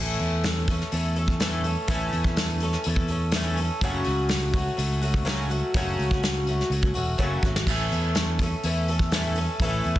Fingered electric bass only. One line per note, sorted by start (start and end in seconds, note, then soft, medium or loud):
0.00 0.16 A1 loud
0.20 0.82 E2 medium
0.92 1.75 E2 loud
1.88 2.09 A1 medium
2.13 2.75 E2 loud
2.86 3.69 E2 loud
3.81 4.02 F#1 loud
4.07 4.68 C#2 loud
4.78 5.61 C#2 loud
5.74 5.95 F#1 loud
5.99 6.61 C#2 loud
6.70 6.91 C#2 medium
6.96 7.17 E1 medium
7.19 7.40 F#1 medium
7.43 7.65 G#1 medium
7.67 7.88 A1 loud
7.92 8.54 E2 loud
8.64 9.47 E2 loud
9.60 9.81 A1 loud
9.85 9.99 E2 medium